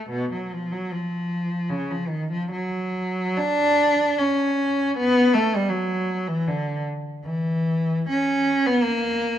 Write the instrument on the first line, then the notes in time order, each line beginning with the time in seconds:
cello
0.09 B2
0.32 F#3
0.52 F3
0.72 F#3
0.91 F3
1.70 C#3
1.90 F3
2.08 D#3
2.31 F3
2.51 F#3
3.38 D4
4.18 C#4
4.97 B3
5.34 A3
5.55 G3
5.69 F#3
6.28 E3
6.47 D3
7.24 E3
8.09 C#4
8.66 B3
8.83 A#3